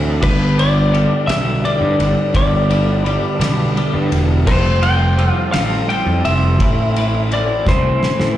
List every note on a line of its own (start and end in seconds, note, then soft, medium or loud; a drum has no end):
0.00 0.24 D2 medium
0.00 0.20 A2 medium
0.00 0.21 E3 medium
0.00 0.21 A3 medium
0.00 0.18 C4 medium
0.00 0.21 C4 medium
0.00 0.21 E4 medium
0.00 0.18 A4 medium
0.00 0.23 B4 medium
0.00 4.44 D5 medium
0.00 2.31 A5 medium
0.21 1.05 G1 medium
0.21 0.57 G2 loud
0.21 0.57 D3 medium
0.21 0.58 G3 medium
0.21 0.58 B3 loud
0.21 0.59 D4 loud
0.21 4.43 G4 medium
0.21 0.59 G4 loud
0.21 4.43 B4 medium
0.21 0.59 B4 medium
0.21 3.01 D6 loud
0.21 kick loud
0.21 crash medium
0.58 0.91 G2 medium
0.58 0.91 D3 medium
0.58 0.92 G3 medium
0.58 0.93 B3 medium
0.58 0.93 D4 medium
0.58 0.94 G4 medium
0.58 1.32 D5 medium
0.58 ride medium
0.91 1.27 G2 medium
0.91 1.28 D3 medium
0.91 1.29 G3 medium
0.91 1.29 B3 medium
0.91 1.30 D4 medium
0.91 1.31 G4 medium
0.91 ride medium
1.27 1.56 B1 medium
1.27 1.62 G2 medium
1.27 1.64 D3 medium
1.27 1.64 G3 medium
1.27 1.65 B3 loud
1.27 1.65 D4 medium
1.27 1.66 G4 loud
1.27 1.65 E5 loud
1.27 snare loud
1.27 ride loud
1.64 2.32 G2 medium
1.64 2.33 D3 medium
1.64 2.34 G3 medium
1.64 2.34 B3 medium
1.64 2.34 D4 medium
1.64 2.35 G4 medium
1.64 2.35 D5 loud
1.64 ride medium
1.81 1.95 G2 loud
2.00 2.13 G1 medium
2.00 ride medium
2.33 3.16 G1 loud
2.33 2.68 G2 medium
2.33 2.68 D3 loud
2.33 2.70 G3 loud
2.33 2.69 B3 medium
2.33 2.70 D4 loud
2.33 2.71 G4 loud
2.33 4.08 D5 medium
2.33 8.38 A5 medium
2.33 kick loud
2.33 ride loud
2.69 3.04 G2 medium
2.69 3.04 D3 medium
2.69 3.05 G3 medium
2.69 3.05 B3 medium
2.69 3.06 D4 loud
2.69 3.07 G4 medium
2.69 ride medium
3.04 3.39 G2 medium
3.04 3.39 D3 medium
3.04 3.40 G3 medium
3.04 3.40 B3 medium
3.04 3.41 D4 medium
3.04 3.41 G4 medium
3.04 3.39 B5 medium
3.04 ride medium
3.40 3.68 B1 medium
3.40 3.74 G2 loud
3.40 3.75 D3 loud
3.40 3.75 G3 loud
3.40 3.76 B3 loud
3.40 3.76 D4 loud
3.40 3.77 G4 loud
3.40 4.50 B5 loud
3.40 snare loud
3.40 ride loud
3.75 4.44 G2 medium
3.75 4.45 D3 medium
3.75 4.45 G3 medium
3.75 4.45 B3 medium
3.75 4.46 D4 medium
3.75 4.46 G4 medium
3.75 ride medium
3.94 4.08 G2 loud
4.12 4.47 E1 loud
4.12 ride medium
4.47 5.29 F1 loud
4.47 4.81 F3 loud
4.47 4.82 G3 loud
4.47 4.82 C4 loud
4.47 8.38 C4 medium
4.47 4.83 F4 loud
4.47 6.59 F4 medium
4.47 4.84 A4 loud
4.47 4.84 C5 medium
4.47 6.59 G5 medium
4.47 6.26 C6 loud
4.47 kick loud
4.47 crash loud
4.82 5.16 F3 medium
4.82 5.17 G3 medium
4.82 5.18 C4 medium
4.82 5.18 F4 medium
4.82 5.19 A4 medium
4.82 5.33 G5 loud
4.82 ride medium
5.18 5.52 F3 medium
5.18 5.53 G3 loud
5.18 5.54 C4 medium
5.18 5.54 F4 medium
5.18 5.54 A4 loud
5.18 ride medium
5.33 5.50 F5 loud
5.52 5.81 A1 medium
5.52 5.88 F3 loud
5.52 5.88 G3 medium
5.52 5.90 C4 loud
5.52 5.90 F4 loud
5.52 5.90 A4 loud
5.52 5.86 F5 loud
5.52 snare loud
5.52 ride loud
5.89 6.58 F3 medium
5.89 6.58 G3 medium
5.89 6.62 C4 medium
5.89 6.59 F4 medium
5.89 6.59 A4 medium
5.89 6.22 G5 loud
5.89 ride medium
6.07 6.20 F2 loud
6.25 6.60 F1 loud
6.25 7.27 E5 loud
6.25 6.42 C6 medium
6.25 ride medium
6.60 7.42 A1 loud
6.60 6.95 A2 medium
6.60 6.96 E3 loud
6.60 6.95 A3 loud
6.60 6.96 C4 loud
6.60 8.38 E4 medium
6.60 6.96 E4 medium
6.60 6.97 B4 loud
6.60 8.38 B5 medium
6.60 kick loud
6.60 ride loud
6.96 7.31 A2 medium
6.96 7.31 E3 medium
6.96 7.32 A3 medium
6.96 7.33 C4 medium
6.96 7.33 E4 medium
6.96 7.34 B4 medium
6.96 ride medium
7.31 7.67 A2 medium
7.31 7.67 E3 medium
7.31 7.68 A3 medium
7.31 7.68 C4 medium
7.31 7.69 E4 medium
7.31 7.69 B4 medium
7.31 7.68 D5 medium
7.31 ride medium
7.66 7.94 C2 medium
7.66 8.02 A2 medium
7.66 8.03 E3 medium
7.66 8.03 A3 loud
7.66 8.04 C4 loud
7.66 8.04 E4 loud
7.66 8.05 B4 loud
7.66 8.38 C5 medium
7.66 kick medium
7.66 snare medium
8.03 8.38 A2 medium
8.03 8.38 E3 medium
8.03 8.38 A3 medium
8.03 8.38 C4 medium
8.03 8.38 E4 medium
8.03 8.38 B4 medium
8.03 snare medium
8.20 8.34 A2 loud
8.20 snare medium